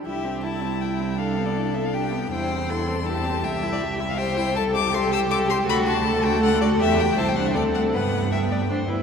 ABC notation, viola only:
X:1
M:3/4
L:1/8
Q:1/4=160
K:C
V:1 name="Viola"
E C E C E C | D B, D B, D B, | E C E C E C | G E G E G E |
[K:G] A G A G A G | A F A F A F | G2 E D C2 | B,2 B,2 D E |]